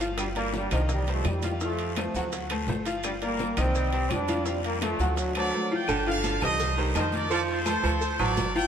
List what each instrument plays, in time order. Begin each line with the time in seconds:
Already playing: upright bass G1
0.00 upright piano F3 F4 F5, high bongo, high conga, high timbale, short guiro, maracas
0.18 trombone section D3 G3, high bongo, high conga, high timbale, long guiro, claves, maracas
0.36 trombone section G3 A#3, upright piano A#3 A#4 D5, high conga, high timbale, maracas
0.54 trombone section D3 G3, high bongo, high conga, low timbale, short guiro, maracas
0.71 upright bass C2, trombone section D3 F3, upright piano D#3 D#4 D#5, high bongo, low conga, high timbale, short guiro, claves, maracas
0.89 trombone section D#3 G3, high bongo, high conga, low conga, long guiro, maracas
1.07 trombone section F3, upright piano G3 G4 C5, high bongo, high conga, high timbale, maracas
1.11 trombone section A3
1.25 upright bass F2, trombone section D#3 G3, high bongo, low bongo, high conga, high timbale, low timbale, short guiro, claves, maracas
1.42 trombone section D#3, upright piano F3 F4 F5, high bongo, high conga, high timbale, short guiro, maracas
1.47 trombone section G3
1.60 upright piano F3 F4 F5, trombone section F3 A3, high bongo, high conga, long guiro, maracas
1.79 high conga, high timbale, maracas
1.96 trombone section C3 F3, upright piano A3 A4 C5, high bongo, high conga, high timbale, low timbale, short guiro, claves, maracas
2.14 upright bass D2, upright piano F#3 F#4 F#5, high bongo, high conga, short guiro, maracas
2.32 high bongo, high conga, high timbale, long guiro, maracas
2.50 upright piano A3 A4 C5, high bongo, high conga, high timbale, claves, maracas
2.67 upright bass G1, upright piano A3 A4 C5, high bongo, low bongo, high conga, low timbale, short guiro, maracas
2.85 upright piano F3 F4 F5, high bongo, high conga, high timbale, short guiro, maracas
3.03 trombone section D3 G3, high bongo, high conga, high timbale, long guiro, claves, maracas
3.22 trombone section G3 A#3, upright piano A#3 A#4 D5, high conga, high timbale, maracas
3.39 high bongo, high conga, low timbale, short guiro, maracas
3.57 upright bass C2, upright piano D#3 D#4 D#5, trombone section G3 C4, high bongo, low conga, high timbale, short guiro, claves, maracas
3.74 high bongo, high conga, long guiro, maracas
3.93 upright piano G3 G4 C5, high bongo, high conga, high timbale, maracas
4.10 upright bass F2, trombone section G3 D4, high bongo, low bongo, high conga, high timbale, low timbale, short guiro, claves, maracas
4.28 upright piano F3 F4 F5, high bongo, high conga, high timbale, short guiro, maracas
4.45 trombone section C3 G3, upright piano F3 F4 F5, high bongo, high conga, long guiro, maracas
4.64 trombone section G3 A#3, high conga, high timbale, maracas
4.81 trombone section F3 A3, upright piano A3 A4 C5, high bongo, high conga, high timbale, low timbale, short guiro, claves, maracas
4.99 upright bass D2, upright piano F#3 F#4 F#5, high bongo, high conga, short guiro, maracas
5.16 trombone section D3 F#3, high bongo, high conga, high timbale, long guiro, maracas
5.35 trombone section D3 F#3, upright piano A3 A4 C5, trumpet section A#4 D5, high bongo, high conga, high timbale, claves, maracas
5.54 upright piano A3 A4 C5
5.72 upright piano F3 F4 F5, trumpet section D5 G5
5.87 upright bass G1, baritone saxophone D3, cowbell, high conga, low agogo, long guiro, claves, maracas
6.06 upright piano F3 F4 F5, trumpet section D5 F5, cowbell, high conga
6.22 cowbell, high conga, low timbale, low agogo, short guiro, maracas
6.40 upright bass C2, upright piano G3 G4 C5, trumpet section C5 D#5, cowbell, high conga, low conga, low agogo, short guiro, claves, maracas
6.58 cowbell, high conga, low conga, low agogo, long guiro, maracas
6.77 baritone saxophone D#3, upright piano G3 G4 C5, high conga
6.95 upright bass F2, upright piano D#3 D#4 D#5, trumpet section G4 C5, cowbell, high conga, low timbale, low agogo, short guiro, claves, maracas
7.12 trumpet section A#4 D5, cowbell, high conga, short guiro, maracas
7.30 baritone saxophone F3, upright piano F3 F4 F5, trumpet section A4 D5, cowbell, low agogo, long guiro, maracas
7.48 trumpet section A4 C5, cowbell, high conga
7.66 upright piano A3 A4 C5, cowbell, high conga, low timbale, low agogo, short guiro, claves, maracas
7.83 upright bass D2, baritone saxophone F3, upright piano A3 A4 C5, high conga, low agogo, short guiro, maracas
8.01 cowbell, high conga, long guiro, maracas
8.19 upright bass A1, baritone saxophone F#3, upright piano F#3 F#4 C5, trumpet section A#4 D5, high conga, low agogo, claves
8.36 upright bass G1, cowbell, high conga, low timbale, low agogo, short guiro, maracas
8.55 upright piano F3 F4 F5, trumpet section D5 G5, high conga, short guiro, maracas